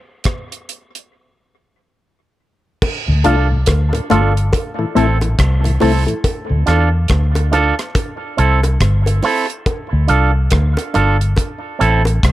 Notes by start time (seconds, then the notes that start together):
0.24 kick, cross-stick, closed hi-hat
0.52 closed hi-hat
0.69 closed hi-hat
0.95 closed hi-hat
2.82 kick, crash, high bongo
3.08 D2 A2
3.24 C2 A3 D4 F4 A4, closed hi-hat
3.51 D2 A2
3.66 D2, kick, cross-stick, closed hi-hat, high bongo
3.93 D2 A2, closed hi-hat, high bongo
4.10 G1 A3 D4 F4 A4, closed hi-hat, high bongo, low bongo
4.37 closed hi-hat
4.53 kick, closed hi-hat, high bongo
4.79 A2 E3 E4 A4
4.95 A1 A3 C4 E4 A4, closed hi-hat
5.21 A2 E3, closed hi-hat, high bongo
5.39 C2, kick, cross-stick, closed hi-hat
5.63 A2 E3, muted clean electric guitar stroke, closed hi-hat, high bongo
5.80 C2 A3 C4 E4 A4, open hi-hat, low bongo
6.07 A2 E3 E4 A4, closed hi-hat
6.24 kick, closed hi-hat, high bongo
6.50 D2 A2
6.66 E2 D4 F4 A4, cross-stick, closed hi-hat
7.08 D2, kick, cross-stick, closed hi-hat, high bongo
7.35 closed hi-hat, high bongo
7.51 D4 F4 A4, closed hi-hat, high bongo, low bongo
7.79 cross-stick, closed hi-hat
7.95 kick, closed hi-hat, high bongo
8.37 C2 C4 E4 A4, closed hi-hat
8.63 muted clean electric guitar stroke, closed hi-hat, high bongo
8.81 G1, kick, cross-stick, closed hi-hat
9.06 muted clean electric guitar stroke, closed hi-hat, high bongo
9.23 C4 E4 A4, open hi-hat, low bongo
9.50 closed hi-hat
9.66 kick, closed hi-hat, high bongo
9.93 D2
10.08 C2 D4 F4 A4, closed hi-hat
10.51 D2, kick, cross-stick, closed hi-hat, high bongo
10.77 closed hi-hat, high bongo
10.94 G1 D4 F4 A4, closed hi-hat, high bongo, low bongo
11.21 closed hi-hat
11.37 kick, closed hi-hat, high bongo
11.79 A1 C4 E4 A4, closed hi-hat
12.05 muted clean electric guitar stroke, closed hi-hat, high bongo
12.23 C2, kick, cross-stick, closed hi-hat